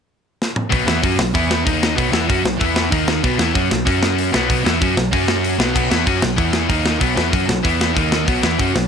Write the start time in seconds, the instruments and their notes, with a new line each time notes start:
0.42 snare
0.56 mid tom
0.70 picked electric bass B1, overdriven electric guitar B2 F#3 B3, kick, open hi-hat
0.86 picked electric bass E2, overdriven electric guitar E3 B3 E4, snare
1.02 picked electric bass F#2, overdriven electric guitar F#3 C#4 F#4, kick, open hi-hat
1.18 picked electric bass B1, overdriven electric guitar B2 F#3, snare
1.34 picked electric bass E2, overdriven electric guitar E3 B3 E4, kick, open hi-hat
1.51 snare
1.65 picked electric bass D#2, overdriven electric guitar D#3 A#3 D#4, kick, open hi-hat
1.83 snare
1.96 picked electric bass B1, overdriven electric guitar B2 F#3 B3, kick, open hi-hat
2.11 picked electric bass E2, overdriven electric guitar E3 B3 E4, snare
2.28 picked electric bass F#2, overdriven electric guitar F#3 C#4 F#4, kick, open hi-hat
2.43 picked electric bass B1, overdriven electric guitar B2 F#3, snare
2.59 picked electric bass E2, overdriven electric guitar E3 B3 E4, kick, open hi-hat
2.76 snare
2.91 picked electric bass D#2, overdriven electric guitar D#3 A#3 D#4, kick, open hi-hat
3.08 snare
3.23 picked electric bass B1, overdriven electric guitar B2 F#3 B3, kick, open hi-hat
3.38 picked electric bass E2, overdriven electric guitar E3 B3 E4, snare
3.54 picked electric bass F#2, overdriven electric guitar F#3 C#4 F#4, kick, open hi-hat
3.70 picked electric bass B1, overdriven electric guitar B2 F#3, snare
3.85 picked electric bass F#2, overdriven electric guitar F#3 C#4 F#4, kick, open hi-hat
4.03 snare
4.18 open hi-hat
4.32 picked electric bass B1, overdriven electric guitar B2 F#3 B3, snare
4.48 picked electric bass B1, overdriven electric guitar B2 F#3 B3, kick, open hi-hat
4.64 picked electric bass E2, overdriven electric guitar E3 B3 E4, snare
4.81 picked electric bass F#2, overdriven electric guitar F#3 C#4 F#4, kick, open hi-hat
4.96 picked electric bass B1, overdriven electric guitar B2 F#3, snare
5.12 picked electric bass F#2, overdriven electric guitar F#3 C#4 F#4, kick, open hi-hat
5.28 snare
5.44 open hi-hat
5.58 picked electric bass B1, overdriven electric guitar B2 F#3 B3, snare
5.74 picked electric bass B1, overdriven electric guitar B2 F#3 B3, kick, crash
5.90 picked electric bass E2, overdriven electric guitar E3 B3 E4, snare
6.06 picked electric bass F#2, overdriven electric guitar F#3 C#4 F#4, kick, open hi-hat
6.21 picked electric bass B1, overdriven electric guitar B2 F#3, snare
6.36 picked electric bass E2, overdriven electric guitar E3 B3 E4, kick, open hi-hat
6.53 snare
6.68 picked electric bass D#2, overdriven electric guitar D#3 A#3 D#4, kick, open hi-hat
6.86 snare
7.00 picked electric bass B1, overdriven electric guitar B2 F#3 B3, kick, open hi-hat
7.15 picked electric bass E2, overdriven electric guitar E3 B3 E4, snare
7.30 picked electric bass F#2, overdriven electric guitar F#3 C#4 F#4, kick
7.34 distorted electric guitar F#3 F#4, open hi-hat
7.46 picked electric bass B1, overdriven electric guitar B2 F#3, snare
7.63 picked electric bass E2, overdriven electric guitar E3 B3 E4, kick, open hi-hat
7.81 snare
7.94 picked electric bass D#2, overdriven electric guitar D#3 A#3 D#4, kick, open hi-hat
8.12 snare
8.25 picked electric bass B1, overdriven electric guitar B2 F#3 B3, kick, open hi-hat
8.42 picked electric bass E2, overdriven electric guitar E3 B3 E4, snare
8.58 picked electric bass F#2, overdriven electric guitar F#3 C#4 F#4, kick, open hi-hat
8.74 picked electric bass B1, overdriven electric guitar B2 F#3, snare